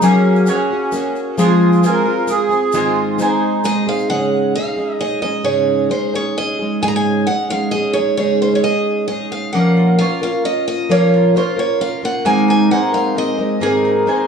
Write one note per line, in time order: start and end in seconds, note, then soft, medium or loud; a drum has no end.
0.02 0.48 F#3 medium
0.02 0.45 A#3 medium
0.02 1.39 A#3 medium
0.02 0.46 C#4 medium
0.02 0.48 C#4 loud
0.02 0.48 F#4 medium
0.02 0.49 G#4 medium
0.02 0.48 G#5 medium
0.02 shaker medium
0.36 shaker soft
0.46 0.70 A#3 medium
0.46 0.71 C#4 medium
0.46 1.13 C#4 medium
0.46 1.43 F#4 medium
0.46 0.71 F#4 medium
0.46 0.69 G#4 medium
0.46 1.44 C#5 medium
0.46 1.39 G#5 medium
0.46 shaker medium
0.71 0.92 C#4 soft
0.71 0.93 F#4 soft
0.71 0.94 G#4 soft
0.92 1.38 A#3 medium
0.92 1.38 C#4 medium
0.92 1.39 F#4 medium
0.92 1.39 G#4 medium
0.92 shaker medium
1.16 shaker soft
1.38 1.84 F3 medium
1.38 1.82 G#3 medium
1.38 2.74 G#3 medium
1.38 1.84 C4 medium
1.38 1.81 F4 medium
1.38 1.84 F4 medium
1.38 1.86 G#4 medium
1.38 1.85 G#5 medium
1.38 shaker medium
1.72 shaker soft
1.83 2.06 G#3 medium
1.83 2.07 C4 medium
1.83 2.79 F4 medium
1.83 2.06 F4 medium
1.83 2.04 G#4 medium
1.83 2.32 A#4 loud
1.83 2.80 C5 medium
1.83 2.75 G#5 medium
1.83 shaker medium
2.06 2.28 C4 soft
2.06 2.29 F4 soft
2.06 2.29 G#4 soft
2.27 2.51 G#3 medium
2.27 2.51 C4 medium
2.27 2.50 F4 medium
2.27 2.76 G#4 loud
2.27 2.48 G#4 medium
2.27 shaker medium
2.49 2.73 C4 soft
2.49 2.74 F4 soft
2.49 2.73 G#4 medium
2.49 shaker soft
2.72 3.19 G#2 medium
2.72 3.20 D#3 medium
2.72 3.17 G#3 medium
2.72 4.11 G#3 medium
2.72 3.18 C4 medium
2.72 3.19 D#4 medium
2.72 3.21 F4 medium
2.72 3.20 G#4 loud
2.72 3.20 G#5 medium
2.72 shaker medium
3.18 3.63 G#3 medium
3.18 3.64 C4 medium
3.18 3.84 D#4 medium
3.18 3.65 D#4 medium
3.18 4.16 D#4 medium
3.18 3.65 G#4 medium
3.18 4.16 C5 medium
3.18 4.16 G#5 medium
3.18 shaker medium
3.64 3.87 G#3 medium
3.64 3.88 C4 medium
3.64 3.87 D#4 medium
3.64 3.85 G#4 medium
3.64 3.88 D#5 medium
3.64 shaker medium
3.87 4.09 G#3 soft
3.87 4.10 C4 soft
3.87 4.09 D#4 soft
3.87 4.10 G#4 soft
3.87 4.09 F5 medium
3.99 shaker soft
4.09 4.55 G#2 medium
4.09 4.55 C#3 medium
4.09 4.53 G#3 medium
4.09 4.55 C#4 medium
4.09 4.55 D#4 medium
4.09 4.56 G#4 medium
4.09 4.55 F#5 medium
4.55 4.78 G#3 medium
4.55 4.77 C#4 soft
4.55 4.77 D#4 medium
4.55 4.75 G#4 medium
4.55 5.00 F5 medium
4.77 4.98 G#3 soft
4.77 4.99 C#4 soft
4.77 5.00 D#4 soft
4.77 5.00 G#4 soft
4.99 5.23 G#3 medium
4.99 5.23 C#4 medium
4.99 5.22 D#4 medium
4.99 5.20 G#4 medium
4.99 5.21 D#5 medium
5.22 5.43 G#3 soft
5.22 5.44 C#4 soft
5.22 5.45 D#4 soft
5.22 5.44 G#4 soft
5.22 5.44 D#5 medium
5.43 5.90 G#2 medium
5.43 5.91 C#3 medium
5.43 5.88 G#3 medium
5.43 5.90 C#4 medium
5.43 5.91 D#4 medium
5.43 5.91 G#4 medium
5.43 5.90 C#5 medium
5.90 6.14 G#3 medium
5.90 6.14 C#4 medium
5.90 6.14 D#4 medium
5.90 6.12 G#4 medium
5.90 6.15 C5 medium
6.14 6.35 G#3 soft
6.14 6.37 C#4 soft
6.14 6.37 D#4 soft
6.14 6.37 G#4 soft
6.14 6.38 C#5 medium
6.36 6.60 G#3 medium
6.36 6.60 C#4 medium
6.36 6.59 D#4 medium
6.36 6.58 G#4 medium
6.36 6.82 D#5 medium
6.59 6.82 G#3 soft
6.59 6.82 C#4 soft
6.59 6.83 D#4 soft
6.59 6.82 G#4 soft
6.82 7.28 G#2 medium
6.82 7.28 C#3 medium
6.82 7.27 G#3 medium
6.82 7.28 C#4 medium
6.82 7.29 D#4 medium
6.82 7.29 G#4 medium
6.82 6.88 G#5 loud
6.88 6.95 A#5 medium
6.96 7.26 G#5 medium
7.27 7.51 G#3 medium
7.27 7.51 C#4 medium
7.27 7.49 D#4 medium
7.27 7.50 F#5 medium
7.31 7.48 G#4 medium
7.50 7.71 G#3 soft
7.50 7.72 C#4 soft
7.50 7.73 D#4 soft
7.50 7.73 G#4 soft
7.50 7.71 F5 medium
7.71 7.96 G#3 medium
7.71 7.96 C#4 medium
7.71 7.95 D#4 medium
7.71 7.96 D#5 medium
7.75 7.94 G#4 medium
7.93 8.17 C#4 soft
7.93 8.18 D#4 soft
7.93 8.18 G#4 soft
7.93 8.16 C#5 medium
7.98 8.18 G#3 soft
8.17 8.64 G#2 medium
8.17 8.64 C#3 medium
8.17 8.62 G#3 medium
8.17 8.64 C#4 medium
8.17 8.64 D#4 medium
8.17 8.65 G#4 medium
8.17 8.41 C#5 medium
8.42 8.55 C5 medium
8.55 8.63 C#5 medium
8.63 9.07 G#3 medium
8.63 9.09 C#4 medium
8.63 9.09 D#4 medium
8.63 9.10 G#4 medium
8.63 9.06 D#5 medium
9.08 9.54 G#3 medium
9.08 9.55 C#4 medium
9.08 9.55 D#4 medium
9.08 9.31 D#5 medium
9.12 9.56 G#4 soft
9.32 9.52 F5 medium
9.53 9.99 A#2 medium
9.53 10.00 F3 medium
9.53 10.91 A#3 medium
9.53 9.99 A#3 medium
9.53 10.00 C#4 medium
9.53 10.02 A#4 medium
9.53 10.00 F5 medium
9.53 9.98 F#5 medium
9.77 9.99 F4 soft
9.99 10.22 A#3 soft
9.99 10.23 C#4 medium
9.99 11.13 F4 medium
9.99 10.22 F4 medium
9.99 11.35 C#5 medium
9.99 10.22 F5 medium
9.99 10.90 F5 medium
10.03 10.21 A#4 medium
10.22 10.43 A#3 soft
10.22 10.44 C#4 soft
10.22 10.45 F4 soft
10.22 10.45 A#4 soft
10.22 10.45 F5 medium
10.44 10.89 A#3 medium
10.44 10.89 C#4 medium
10.44 10.90 F4 medium
10.44 10.91 A#4 medium
10.44 10.66 D#5 medium
10.68 10.91 D#5 medium
10.89 11.35 A#2 medium
10.89 11.35 F3 medium
10.89 11.34 A#3 medium
10.89 12.25 A#3 medium
10.89 11.35 C#4 medium
10.89 11.36 F4 medium
10.89 11.37 A#4 medium
10.89 11.36 C#5 medium
10.89 11.36 F5 medium
11.14 11.35 F4 medium
11.35 11.58 A#3 soft
11.35 11.58 C#4 medium
11.35 12.31 F4 medium
11.35 11.57 F4 medium
11.35 11.55 A#4 medium
11.35 11.59 C5 medium
11.35 12.31 C#5 medium
11.35 12.25 F5 medium
11.56 11.78 A#3 soft
11.56 11.79 C#4 soft
11.56 11.80 F4 soft
11.56 11.80 A#4 soft
11.56 11.82 C#5 medium
11.79 12.02 A#3 soft
11.79 12.03 C#4 soft
11.79 12.02 F4 medium
11.79 12.01 A#4 medium
11.79 12.04 F5 medium
12.02 12.25 A#3 soft
12.02 12.26 C#4 soft
12.02 12.26 F4 soft
12.02 12.25 A#4 soft
12.02 12.25 F#5 medium
12.25 12.70 G#2 medium
12.25 12.71 D#3 medium
12.25 12.69 G#3 medium
12.25 13.60 A#3 medium
12.25 12.69 C4 medium
12.25 12.71 D#4 medium
12.25 12.71 A#4 medium
12.25 12.49 G#5 medium
12.25 12.72 G#5 medium
12.48 12.71 D#4 medium
12.48 12.71 G#5 medium
12.70 12.93 G#3 medium
12.70 12.93 C4 medium
12.70 13.84 D#4 medium
12.70 12.92 D#4 medium
12.70 12.91 A#4 medium
12.70 14.06 C5 medium
12.70 12.94 F#5 medium
12.70 13.62 G#5 medium
12.92 13.14 G#3 soft
12.92 13.15 C4 soft
12.92 13.16 D#4 soft
12.92 13.15 A#4 soft
12.92 13.17 F5 medium
13.15 13.38 G#3 medium
13.15 13.39 C4 medium
13.15 13.38 D#4 medium
13.15 13.36 A#4 medium
13.15 13.64 D#5 medium
13.38 13.61 G#3 soft
13.38 13.61 C4 soft
13.38 13.61 D#4 soft
13.38 13.61 A#4 soft
13.60 14.06 G#2 medium
13.60 14.07 D#3 medium
13.60 14.05 G#3 medium
13.60 14.27 A#3 medium
13.60 14.06 C4 medium
13.60 14.07 D#4 medium
13.60 14.27 G#4 medium
13.60 14.08 A#4 medium
13.60 14.07 G#5 medium
13.85 14.06 D#4 medium
14.06 14.27 G#3 soft
14.06 14.27 C4 medium
14.06 14.27 D#4 medium
14.06 14.27 A#4 medium
14.06 14.27 C5 soft
14.06 14.27 G#5 medium